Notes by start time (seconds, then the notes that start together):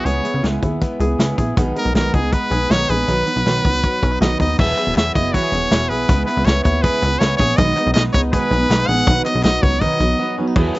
Already playing: G#4
0.05 C#2 C#3 G#3 B3 E4 G#4 C#5, closed hi-hat
0.23 B3 E4 G#4, closed hi-hat
0.34 C#2
0.42 C#2 C#3 G#3 B3 E4 G#4, snare, closed hi-hat
0.61 D#2 B3 E4 G#4, kick, closed hi-hat
0.80 G#3 B3 E4 G#4, kick, closed hi-hat
0.99 C#2 B3 E4 G#4, closed hi-hat
1.18 C#2 C#3 G#3 B3 E4 G#4, snare, closed hi-hat
1.38 A#1 B3 E4 G#4, kick, closed hi-hat
1.56 B1 B2 D#3 G#3 B3 D#4 G#4, kick, closed hi-hat
1.75 G#3 B3 D#4 G#4 A#4, closed hi-hat
1.85 B1
1.94 B1 B2 D#3 G#3 B3 D#4 G#4 A#4, snare, closed hi-hat
2.12 C#2 G#3 B3 D#4 G#4, kick, closed hi-hat
2.31 G#3 B3 D#4 G#4 B4, kick, closed hi-hat
2.50 B1 G#3 B3 D#4 G#4, closed hi-hat
2.69 B1 B2 D#3 G#3 B3 D#4 G#4 C#5, snare, closed hi-hat
2.89 A#1 G#3 B3 D#4 G#4 B4, closed hi-hat
3.07 B1 B2 D#3 F#3 B3 D#4 B4, closed hi-hat
3.25 F#3 B3 D#4 B4, closed hi-hat
3.36 B1
3.45 B1 B2 D#3 F#3 B3 D#4 B4, snare, closed hi-hat
3.64 C#2 F#3 B3 D#4 B4, kick, closed hi-hat
3.83 F#3 B3 D#4 B4, kick, closed hi-hat
4.01 B1 F#3 B3 C#4 D#4 B4, kick, closed hi-hat
4.12 D#4
4.20 B1 B2 D#3 F#3 B3 D#4 B4 D#5, snare, closed hi-hat
4.38 D#2 F#3 B3 D#4 B4 D#5, kick, open hi-hat
4.58 E1 E3 F#3 B3 E4 G#4 E5, kick, crash
4.77 B3 E4 G#4, clap, closed hi-hat
4.87 E1
4.95 E1 F#3 B3 E4 G#4 E5, snare, clap, closed hi-hat
5.14 F#1 B3 E4 G#4 D#5, kick, closed hi-hat
5.33 E3 F#3 B3 E4 F#4 G#4 C#5, kick, closed hi-hat
5.43 G#4
5.52 E1 B3 E4 G#4, closed hi-hat
5.71 E1 F#3 B3 E4 G#4, snare, clap, closed hi-hat
5.89 B1 B3 E4 G#4 B4, open hi-hat
6.08 C#2 C#3 G#3 B3 E4 B4, kick, closed hi-hat
6.26 B3 E4 B4, clap, closed hi-hat
6.37 C#2
6.45 C#2 G#3 B3 E4 B4 C#5, snare, clap, closed hi-hat
6.63 D#2 B3 E4 B4 C#5, kick, closed hi-hat
6.82 C#3 G#3 B3 E4 G#4 B4, kick, closed hi-hat
7.02 C#2 B3, closed hi-hat
7.19 C#2 G#3 B3 E4 B4 C#5, snare, clap, closed hi-hat
7.37 A#1 E4 G#4 B4 C#5, kick, open hi-hat
7.41 B3
7.57 B1 B2 D#3 G#3 B3 D#4 B4 D#5, kick, closed hi-hat
7.76 G#3 B3 D#4 B4, clap, closed hi-hat
7.86 B1
7.94 B1 G#3 B3 D#4 B4 D#5, snare, clap, closed hi-hat
8.13 C#2 G#3 B3 D#4 B4 C#5, kick, closed hi-hat
8.32 B2 D#3 G#3 B3 D#4 G#4 B4, kick, closed hi-hat
8.51 B1 G#3 B3 D#4 B4, closed hi-hat
8.69 B1 G#3 B3 D#4 B4, snare, clap, closed hi-hat
8.88 A#1 G#3 B3 D#4 G#4 B4 F#5, open hi-hat
9.07 B1 B2 D#3 F#3 B3 D#4 B4, kick, closed hi-hat
9.25 F#3 B3 D#4 B4 D#5, clap, closed hi-hat
9.35 B1
9.43 B1 F#3 B3 D#4 B4 D#5, snare, clap, closed hi-hat
9.62 C#2 F#3 B3 D#4 B4 C#5, kick, closed hi-hat
9.80 B2 D#3 F#3 B3 D#4 B4 D#5, kick, closed hi-hat
10.00 B1 F#3 B3 D#4, closed hi-hat
10.18 F#3 B3 D#4 B4
10.37 F#3 B3 C#4 D#4 B4
10.47 D#4
10.56 E1 E3 F#3 B3 E4 G#4, kick, crash
10.74 B3 G#4, hi-hat pedal, open hi-hat